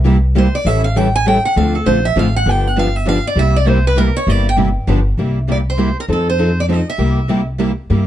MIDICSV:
0, 0, Header, 1, 5, 480
1, 0, Start_track
1, 0, Tempo, 301963
1, 1041, Time_signature, 3, 2, 24, 8
1, 12826, End_track
2, 0, Start_track
2, 0, Title_t, "Steel-string acoustic guitar"
2, 0, Program_c, 0, 25
2, 609, Note_on_c, 0, 72, 74
2, 867, Note_off_c, 0, 72, 0
2, 873, Note_on_c, 0, 74, 89
2, 1058, Note_off_c, 0, 74, 0
2, 1058, Note_on_c, 0, 76, 82
2, 1331, Note_off_c, 0, 76, 0
2, 1338, Note_on_c, 0, 77, 88
2, 1541, Note_off_c, 0, 77, 0
2, 1541, Note_on_c, 0, 79, 81
2, 1812, Note_off_c, 0, 79, 0
2, 1837, Note_on_c, 0, 80, 111
2, 2008, Note_off_c, 0, 80, 0
2, 2031, Note_on_c, 0, 79, 83
2, 2297, Note_off_c, 0, 79, 0
2, 2310, Note_on_c, 0, 78, 89
2, 2485, Note_off_c, 0, 78, 0
2, 2502, Note_on_c, 0, 77, 78
2, 2772, Note_off_c, 0, 77, 0
2, 2781, Note_on_c, 0, 69, 50
2, 2959, Note_off_c, 0, 69, 0
2, 2962, Note_on_c, 0, 72, 75
2, 3241, Note_off_c, 0, 72, 0
2, 3263, Note_on_c, 0, 76, 91
2, 3440, Note_off_c, 0, 76, 0
2, 3482, Note_on_c, 0, 77, 84
2, 3742, Note_off_c, 0, 77, 0
2, 3758, Note_on_c, 0, 78, 94
2, 3961, Note_off_c, 0, 78, 0
2, 3961, Note_on_c, 0, 79, 98
2, 4249, Note_off_c, 0, 79, 0
2, 4249, Note_on_c, 0, 78, 90
2, 4412, Note_off_c, 0, 78, 0
2, 4438, Note_on_c, 0, 77, 82
2, 4702, Note_off_c, 0, 77, 0
2, 4702, Note_on_c, 0, 76, 93
2, 4878, Note_off_c, 0, 76, 0
2, 4906, Note_on_c, 0, 77, 96
2, 5172, Note_off_c, 0, 77, 0
2, 5204, Note_on_c, 0, 74, 94
2, 5369, Note_off_c, 0, 74, 0
2, 5389, Note_on_c, 0, 76, 95
2, 5653, Note_off_c, 0, 76, 0
2, 5665, Note_on_c, 0, 74, 93
2, 5852, Note_off_c, 0, 74, 0
2, 5852, Note_on_c, 0, 72, 81
2, 6124, Note_off_c, 0, 72, 0
2, 6155, Note_on_c, 0, 71, 90
2, 6324, Note_off_c, 0, 71, 0
2, 6325, Note_on_c, 0, 70, 87
2, 6600, Note_off_c, 0, 70, 0
2, 6621, Note_on_c, 0, 73, 99
2, 6830, Note_off_c, 0, 73, 0
2, 6830, Note_on_c, 0, 74, 88
2, 7093, Note_off_c, 0, 74, 0
2, 7136, Note_on_c, 0, 79, 98
2, 7233, Note_off_c, 0, 79, 0
2, 8769, Note_on_c, 0, 74, 73
2, 8849, Note_off_c, 0, 74, 0
2, 9055, Note_on_c, 0, 72, 81
2, 9478, Note_off_c, 0, 72, 0
2, 9538, Note_on_c, 0, 70, 78
2, 9612, Note_off_c, 0, 70, 0
2, 9739, Note_on_c, 0, 69, 77
2, 10000, Note_off_c, 0, 69, 0
2, 10007, Note_on_c, 0, 72, 83
2, 10480, Note_off_c, 0, 72, 0
2, 10494, Note_on_c, 0, 74, 85
2, 10569, Note_off_c, 0, 74, 0
2, 10687, Note_on_c, 0, 75, 89
2, 10955, Note_off_c, 0, 75, 0
2, 10961, Note_on_c, 0, 76, 88
2, 11843, Note_off_c, 0, 76, 0
2, 12826, End_track
3, 0, Start_track
3, 0, Title_t, "Steel-string acoustic guitar"
3, 0, Program_c, 1, 25
3, 66, Note_on_c, 1, 48, 91
3, 74, Note_on_c, 1, 55, 83
3, 75, Note_on_c, 1, 58, 79
3, 78, Note_on_c, 1, 64, 88
3, 83, Note_on_c, 1, 67, 91
3, 245, Note_off_c, 1, 48, 0
3, 249, Note_off_c, 1, 55, 0
3, 250, Note_off_c, 1, 58, 0
3, 251, Note_off_c, 1, 64, 0
3, 254, Note_off_c, 1, 67, 0
3, 558, Note_on_c, 1, 55, 88
3, 561, Note_on_c, 1, 48, 81
3, 568, Note_on_c, 1, 58, 96
3, 569, Note_on_c, 1, 64, 85
3, 577, Note_on_c, 1, 67, 93
3, 731, Note_off_c, 1, 55, 0
3, 733, Note_off_c, 1, 48, 0
3, 736, Note_off_c, 1, 58, 0
3, 736, Note_off_c, 1, 64, 0
3, 740, Note_off_c, 1, 67, 0
3, 1039, Note_on_c, 1, 52, 63
3, 1044, Note_on_c, 1, 55, 70
3, 1046, Note_on_c, 1, 61, 73
3, 1054, Note_on_c, 1, 64, 71
3, 1060, Note_on_c, 1, 69, 65
3, 1352, Note_off_c, 1, 52, 0
3, 1354, Note_off_c, 1, 55, 0
3, 1355, Note_off_c, 1, 61, 0
3, 1359, Note_off_c, 1, 64, 0
3, 1362, Note_off_c, 1, 69, 0
3, 1526, Note_on_c, 1, 52, 89
3, 1526, Note_on_c, 1, 55, 84
3, 1529, Note_on_c, 1, 61, 94
3, 1531, Note_on_c, 1, 64, 84
3, 1533, Note_on_c, 1, 69, 91
3, 1695, Note_off_c, 1, 52, 0
3, 1695, Note_off_c, 1, 55, 0
3, 1696, Note_off_c, 1, 61, 0
3, 1697, Note_off_c, 1, 64, 0
3, 1698, Note_off_c, 1, 69, 0
3, 2004, Note_on_c, 1, 52, 78
3, 2008, Note_on_c, 1, 55, 83
3, 2012, Note_on_c, 1, 61, 95
3, 2014, Note_on_c, 1, 64, 80
3, 2020, Note_on_c, 1, 69, 89
3, 2173, Note_off_c, 1, 52, 0
3, 2175, Note_off_c, 1, 55, 0
3, 2177, Note_off_c, 1, 61, 0
3, 2178, Note_off_c, 1, 64, 0
3, 2181, Note_off_c, 1, 69, 0
3, 2483, Note_on_c, 1, 50, 67
3, 2486, Note_on_c, 1, 57, 69
3, 2488, Note_on_c, 1, 60, 73
3, 2493, Note_on_c, 1, 65, 69
3, 2497, Note_on_c, 1, 69, 69
3, 2793, Note_off_c, 1, 50, 0
3, 2795, Note_off_c, 1, 57, 0
3, 2795, Note_off_c, 1, 60, 0
3, 2798, Note_off_c, 1, 65, 0
3, 2800, Note_off_c, 1, 69, 0
3, 2953, Note_on_c, 1, 50, 87
3, 2960, Note_on_c, 1, 57, 79
3, 2961, Note_on_c, 1, 60, 82
3, 2966, Note_on_c, 1, 65, 84
3, 2969, Note_on_c, 1, 69, 88
3, 3127, Note_off_c, 1, 50, 0
3, 3130, Note_off_c, 1, 57, 0
3, 3131, Note_off_c, 1, 60, 0
3, 3133, Note_off_c, 1, 65, 0
3, 3135, Note_off_c, 1, 69, 0
3, 3429, Note_on_c, 1, 50, 84
3, 3439, Note_on_c, 1, 57, 80
3, 3439, Note_on_c, 1, 60, 88
3, 3446, Note_on_c, 1, 65, 90
3, 3452, Note_on_c, 1, 69, 93
3, 3605, Note_off_c, 1, 50, 0
3, 3610, Note_off_c, 1, 57, 0
3, 3610, Note_off_c, 1, 60, 0
3, 3613, Note_off_c, 1, 65, 0
3, 3616, Note_off_c, 1, 69, 0
3, 3919, Note_on_c, 1, 50, 68
3, 3920, Note_on_c, 1, 59, 70
3, 3921, Note_on_c, 1, 53, 62
3, 3926, Note_on_c, 1, 62, 77
3, 3931, Note_on_c, 1, 67, 71
3, 4229, Note_off_c, 1, 50, 0
3, 4230, Note_off_c, 1, 59, 0
3, 4231, Note_off_c, 1, 53, 0
3, 4233, Note_off_c, 1, 62, 0
3, 4236, Note_off_c, 1, 67, 0
3, 4388, Note_on_c, 1, 50, 87
3, 4394, Note_on_c, 1, 53, 94
3, 4397, Note_on_c, 1, 59, 88
3, 4402, Note_on_c, 1, 62, 87
3, 4408, Note_on_c, 1, 67, 87
3, 4563, Note_off_c, 1, 50, 0
3, 4566, Note_off_c, 1, 53, 0
3, 4568, Note_off_c, 1, 59, 0
3, 4570, Note_off_c, 1, 62, 0
3, 4573, Note_off_c, 1, 67, 0
3, 4859, Note_on_c, 1, 50, 80
3, 4867, Note_on_c, 1, 53, 83
3, 4875, Note_on_c, 1, 59, 89
3, 4879, Note_on_c, 1, 62, 97
3, 4879, Note_on_c, 1, 67, 98
3, 5038, Note_off_c, 1, 50, 0
3, 5042, Note_off_c, 1, 53, 0
3, 5046, Note_off_c, 1, 59, 0
3, 5048, Note_off_c, 1, 67, 0
3, 5049, Note_off_c, 1, 62, 0
3, 5348, Note_on_c, 1, 48, 70
3, 5353, Note_on_c, 1, 55, 74
3, 5360, Note_on_c, 1, 64, 77
3, 5361, Note_on_c, 1, 58, 70
3, 5368, Note_on_c, 1, 67, 73
3, 5663, Note_off_c, 1, 48, 0
3, 5665, Note_off_c, 1, 55, 0
3, 5669, Note_off_c, 1, 58, 0
3, 5669, Note_off_c, 1, 64, 0
3, 5673, Note_off_c, 1, 67, 0
3, 5824, Note_on_c, 1, 48, 85
3, 5831, Note_on_c, 1, 55, 92
3, 5832, Note_on_c, 1, 58, 83
3, 5837, Note_on_c, 1, 64, 97
3, 5839, Note_on_c, 1, 67, 95
3, 6000, Note_off_c, 1, 48, 0
3, 6003, Note_off_c, 1, 55, 0
3, 6004, Note_off_c, 1, 58, 0
3, 6007, Note_off_c, 1, 64, 0
3, 6007, Note_off_c, 1, 67, 0
3, 6300, Note_on_c, 1, 48, 81
3, 6312, Note_on_c, 1, 58, 85
3, 6313, Note_on_c, 1, 55, 84
3, 6318, Note_on_c, 1, 64, 88
3, 6324, Note_on_c, 1, 67, 94
3, 6478, Note_off_c, 1, 48, 0
3, 6483, Note_off_c, 1, 58, 0
3, 6484, Note_off_c, 1, 55, 0
3, 6487, Note_off_c, 1, 64, 0
3, 6490, Note_off_c, 1, 67, 0
3, 6790, Note_on_c, 1, 48, 69
3, 6801, Note_on_c, 1, 55, 72
3, 6803, Note_on_c, 1, 58, 79
3, 6805, Note_on_c, 1, 64, 74
3, 6810, Note_on_c, 1, 67, 77
3, 7103, Note_off_c, 1, 48, 0
3, 7109, Note_off_c, 1, 55, 0
3, 7110, Note_off_c, 1, 58, 0
3, 7110, Note_off_c, 1, 64, 0
3, 7113, Note_off_c, 1, 67, 0
3, 7271, Note_on_c, 1, 48, 86
3, 7276, Note_on_c, 1, 55, 80
3, 7279, Note_on_c, 1, 58, 84
3, 7279, Note_on_c, 1, 64, 90
3, 7285, Note_on_c, 1, 67, 94
3, 7443, Note_off_c, 1, 48, 0
3, 7446, Note_off_c, 1, 55, 0
3, 7447, Note_off_c, 1, 58, 0
3, 7447, Note_off_c, 1, 64, 0
3, 7450, Note_off_c, 1, 67, 0
3, 7753, Note_on_c, 1, 50, 92
3, 7763, Note_on_c, 1, 53, 88
3, 7765, Note_on_c, 1, 62, 93
3, 7769, Note_on_c, 1, 59, 99
3, 7770, Note_on_c, 1, 67, 92
3, 7924, Note_off_c, 1, 50, 0
3, 7929, Note_off_c, 1, 53, 0
3, 7930, Note_off_c, 1, 62, 0
3, 7932, Note_off_c, 1, 59, 0
3, 7932, Note_off_c, 1, 67, 0
3, 8240, Note_on_c, 1, 48, 60
3, 8246, Note_on_c, 1, 55, 62
3, 8246, Note_on_c, 1, 58, 60
3, 8256, Note_on_c, 1, 64, 58
3, 8258, Note_on_c, 1, 67, 69
3, 8548, Note_off_c, 1, 48, 0
3, 8551, Note_off_c, 1, 55, 0
3, 8551, Note_off_c, 1, 58, 0
3, 8556, Note_off_c, 1, 64, 0
3, 8557, Note_off_c, 1, 67, 0
3, 8715, Note_on_c, 1, 48, 69
3, 8716, Note_on_c, 1, 55, 75
3, 8725, Note_on_c, 1, 58, 72
3, 8726, Note_on_c, 1, 64, 75
3, 8726, Note_on_c, 1, 67, 76
3, 8885, Note_off_c, 1, 48, 0
3, 8886, Note_off_c, 1, 55, 0
3, 8890, Note_off_c, 1, 58, 0
3, 8890, Note_off_c, 1, 64, 0
3, 8891, Note_off_c, 1, 67, 0
3, 9177, Note_on_c, 1, 48, 74
3, 9185, Note_on_c, 1, 55, 73
3, 9186, Note_on_c, 1, 58, 81
3, 9196, Note_on_c, 1, 64, 78
3, 9200, Note_on_c, 1, 67, 82
3, 9357, Note_off_c, 1, 48, 0
3, 9361, Note_off_c, 1, 55, 0
3, 9361, Note_off_c, 1, 58, 0
3, 9366, Note_off_c, 1, 64, 0
3, 9368, Note_off_c, 1, 67, 0
3, 9672, Note_on_c, 1, 53, 62
3, 9677, Note_on_c, 1, 60, 62
3, 9686, Note_on_c, 1, 63, 63
3, 9688, Note_on_c, 1, 69, 63
3, 9985, Note_off_c, 1, 53, 0
3, 9988, Note_off_c, 1, 60, 0
3, 9993, Note_off_c, 1, 63, 0
3, 9994, Note_off_c, 1, 69, 0
3, 10153, Note_on_c, 1, 53, 81
3, 10158, Note_on_c, 1, 60, 76
3, 10162, Note_on_c, 1, 63, 83
3, 10168, Note_on_c, 1, 69, 81
3, 10326, Note_off_c, 1, 53, 0
3, 10328, Note_off_c, 1, 60, 0
3, 10330, Note_off_c, 1, 63, 0
3, 10333, Note_off_c, 1, 69, 0
3, 10633, Note_on_c, 1, 53, 73
3, 10641, Note_on_c, 1, 60, 78
3, 10649, Note_on_c, 1, 63, 83
3, 10653, Note_on_c, 1, 69, 81
3, 10806, Note_off_c, 1, 53, 0
3, 10810, Note_off_c, 1, 60, 0
3, 10814, Note_off_c, 1, 63, 0
3, 10816, Note_off_c, 1, 69, 0
3, 11098, Note_on_c, 1, 48, 59
3, 11106, Note_on_c, 1, 55, 64
3, 11106, Note_on_c, 1, 58, 64
3, 11110, Note_on_c, 1, 67, 65
3, 11111, Note_on_c, 1, 64, 69
3, 11420, Note_off_c, 1, 48, 0
3, 11424, Note_off_c, 1, 55, 0
3, 11424, Note_off_c, 1, 58, 0
3, 11426, Note_off_c, 1, 67, 0
3, 11427, Note_off_c, 1, 64, 0
3, 11593, Note_on_c, 1, 48, 72
3, 11593, Note_on_c, 1, 55, 87
3, 11603, Note_on_c, 1, 58, 86
3, 11606, Note_on_c, 1, 64, 93
3, 11611, Note_on_c, 1, 67, 86
3, 11768, Note_off_c, 1, 48, 0
3, 11768, Note_off_c, 1, 55, 0
3, 11773, Note_off_c, 1, 58, 0
3, 11774, Note_off_c, 1, 64, 0
3, 11776, Note_off_c, 1, 67, 0
3, 12063, Note_on_c, 1, 48, 79
3, 12069, Note_on_c, 1, 55, 82
3, 12072, Note_on_c, 1, 58, 82
3, 12078, Note_on_c, 1, 64, 80
3, 12083, Note_on_c, 1, 67, 87
3, 12243, Note_off_c, 1, 48, 0
3, 12246, Note_off_c, 1, 55, 0
3, 12248, Note_off_c, 1, 58, 0
3, 12251, Note_off_c, 1, 64, 0
3, 12253, Note_off_c, 1, 67, 0
3, 12553, Note_on_c, 1, 48, 63
3, 12558, Note_on_c, 1, 58, 68
3, 12561, Note_on_c, 1, 55, 63
3, 12566, Note_on_c, 1, 64, 67
3, 12572, Note_on_c, 1, 67, 74
3, 12826, Note_off_c, 1, 48, 0
3, 12826, Note_off_c, 1, 55, 0
3, 12826, Note_off_c, 1, 58, 0
3, 12826, Note_off_c, 1, 64, 0
3, 12826, Note_off_c, 1, 67, 0
3, 12826, End_track
4, 0, Start_track
4, 0, Title_t, "Steel-string acoustic guitar"
4, 0, Program_c, 2, 25
4, 2484, Note_on_c, 2, 53, 65
4, 2496, Note_on_c, 2, 62, 74
4, 2793, Note_off_c, 2, 53, 0
4, 2799, Note_off_c, 2, 62, 0
4, 2951, Note_on_c, 2, 53, 78
4, 2963, Note_on_c, 2, 62, 89
4, 3126, Note_off_c, 2, 53, 0
4, 3132, Note_off_c, 2, 62, 0
4, 3441, Note_on_c, 2, 53, 100
4, 3446, Note_on_c, 2, 62, 98
4, 3611, Note_off_c, 2, 53, 0
4, 3613, Note_off_c, 2, 62, 0
4, 12826, End_track
5, 0, Start_track
5, 0, Title_t, "Upright bass"
5, 0, Program_c, 3, 32
5, 0, Note_on_c, 3, 36, 88
5, 747, Note_off_c, 3, 36, 0
5, 1032, Note_on_c, 3, 33, 83
5, 2186, Note_off_c, 3, 33, 0
5, 2484, Note_on_c, 3, 38, 85
5, 2866, Note_off_c, 3, 38, 0
5, 2963, Note_on_c, 3, 34, 86
5, 3369, Note_off_c, 3, 34, 0
5, 3434, Note_on_c, 3, 33, 81
5, 3843, Note_off_c, 3, 33, 0
5, 3910, Note_on_c, 3, 31, 92
5, 5063, Note_off_c, 3, 31, 0
5, 5336, Note_on_c, 3, 36, 92
5, 6494, Note_off_c, 3, 36, 0
5, 6785, Note_on_c, 3, 31, 89
5, 7556, Note_off_c, 3, 31, 0
5, 7748, Note_on_c, 3, 31, 91
5, 8133, Note_off_c, 3, 31, 0
5, 8225, Note_on_c, 3, 36, 79
5, 9381, Note_off_c, 3, 36, 0
5, 9673, Note_on_c, 3, 41, 82
5, 10828, Note_off_c, 3, 41, 0
5, 11100, Note_on_c, 3, 36, 79
5, 12262, Note_off_c, 3, 36, 0
5, 12556, Note_on_c, 3, 43, 74
5, 12826, Note_off_c, 3, 43, 0
5, 12826, End_track
0, 0, End_of_file